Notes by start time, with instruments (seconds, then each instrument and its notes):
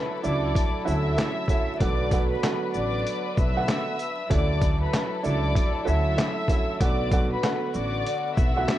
Already playing: upright piano C#3 D3 F#3 A3 E4, string section F#3 E4 A4, violin section B4 B5
0.23 upright bass C#2, upright piano F#3 A3 D4 E4, violin section D5 D6, shaker
0.55 kick, closed hi-hat
0.85 upright bass D2, upright piano D3 F#3 A3 C#4 E4, violin section E5 E6, shaker
1.17 upright piano D3 F#3 A3 C#4 E4, snare, clap, closed hi-hat
1.48 upright piano D3 F#3 A3 C#4 E4, kick, closed hi-hat, shaker
1.79 upright bass B1, upright piano D3 F#3 A3 B3 F#4, string section F#3 D4 B4, violin section D5 D6, kick, closed hi-hat
2.11 upright piano D3 F#3 A3 B3 F#4, kick, closed hi-hat, shaker
2.30 violin section B4 B5
2.43 upright piano D3 F#3 A3 B3 F#4, snare, clap, closed hi-hat
2.73 upright bass A1, violin section D5 D6, shaker
3.07 closed hi-hat
3.37 upright bass B1, violin section E5 E6, kick, shaker
3.56 upright piano D3 F#3 A3 B3 F#4
3.68 snare, clap, closed hi-hat
3.99 closed hi-hat, shaker
4.30 upright bass D2, upright piano C#3 D3 F#3 A3 E4, string section F#3 E4 A4, violin section D5 D6, kick, closed hi-hat
4.61 kick, closed hi-hat, shaker
4.82 violin section B4 B5
4.94 snare, clap, closed hi-hat
5.23 upright bass C#2, upright piano F#3 A3 D4 E4, violin section D5 D6, shaker
5.55 kick, closed hi-hat
5.85 upright bass D2, upright piano D3 F#3 A3 C#4 E4, violin section E5 E6, shaker
6.17 upright piano D3 F#3 A3 C#4 E4, snare, clap, closed hi-hat
6.48 upright piano D3 F#3 A3 C#4 E4, kick, closed hi-hat, shaker
6.81 upright bass B1, upright piano D3 F#3 A3 B3 F#4, string section D3 B3 F#4, violin section D5 D6, kick, closed hi-hat
7.11 upright piano D3 F#3 A3 B3 F#4, kick, closed hi-hat, shaker
7.32 violin section B4 B5
7.44 upright piano D3 F#3 A3 B3 F#4, snare, clap, closed hi-hat
7.74 upright bass A1, violin section D5 D6, shaker
8.06 closed hi-hat
8.35 upright bass B1, violin section E5 E6, kick, shaker
8.56 upright piano D3 F#3 A3 B3 F#4
8.68 snare, clap, closed hi-hat